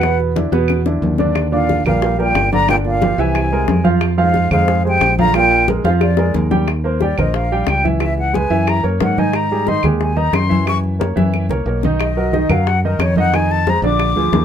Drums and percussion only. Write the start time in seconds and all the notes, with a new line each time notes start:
0.01 high bongo, high conga, claves
0.20 high bongo, high conga
0.36 high bongo, high conga
0.53 high bongo, high conga
0.68 low bongo, high conga, claves
0.86 low bongo, high conga
1.03 high conga
1.18 low bongo, high conga
1.35 high bongo, high conga, claves
1.54 high conga
1.69 high bongo, high conga
1.86 high conga, low conga, claves
2.02 high bongo, high conga
2.19 high conga
2.35 high bongo, low bongo, high conga, claves
2.53 high conga
2.68 high bongo, high conga, claves
2.85 high bongo, high conga
3.02 high bongo, high conga
3.19 high bongo, high conga
3.35 high bongo, high conga, claves
3.51 high bongo, high conga
3.68 high bongo, low bongo, high conga
3.85 high conga
4.01 high bongo, high conga, claves
4.19 high conga
4.34 high bongo, high conga
4.51 high conga, low conga, claves
4.68 high bongo, high conga
4.86 high conga
5.01 high bongo, low bongo, high conga, claves
5.19 high conga
5.34 high bongo, high conga, claves
5.51 high bongo, high conga
5.68 high bongo, high conga
5.85 high bongo
6.01 high bongo, high conga, claves
6.17 high bongo, high conga
6.34 low bongo, high conga
6.51 low bongo, high conga
6.68 high bongo, claves
6.85 high conga
7.01 high bongo, high conga
7.18 high conga, low conga, claves
7.34 high bongo, high conga
7.52 high conga
7.67 high bongo, low bongo, high conga, claves
7.85 high conga
8.00 high bongo, high conga, claves
8.18 high bongo, high conga
8.34 high bongo, high conga
8.51 high bongo, high conga
8.67 high bongo, high conga, claves
8.85 high bongo, high conga
9.00 high bongo, low bongo, high conga
9.18 high conga
9.33 high bongo, high conga, claves
9.51 high conga
9.67 high bongo, high conga
9.83 high conga, low conga, claves
10.01 high bongo, high conga
10.18 high conga
10.33 high bongo, low bongo, high conga, claves
10.51 high conga
10.67 high bongo, high conga, claves
10.83 high bongo, high conga
11.01 high bongo, high conga
11.17 high bongo, high conga
11.34 low bongo, claves
11.49 low bongo, low conga
11.83 low bongo, low conga
12.00 high bongo, high conga, claves
12.17 high conga
12.33 high bongo, high conga
12.50 high conga, low conga, claves
12.67 high bongo, high conga
12.83 high conga
13.00 high bongo, low bongo, claves
13.16 high conga
13.33 high bongo, high conga, claves
13.50 high bongo, high conga
13.67 high bongo, high conga
13.84 high bongo, high conga
13.99 high bongo, high conga, claves
14.17 high bongo, high conga
14.33 high bongo, low bongo, high conga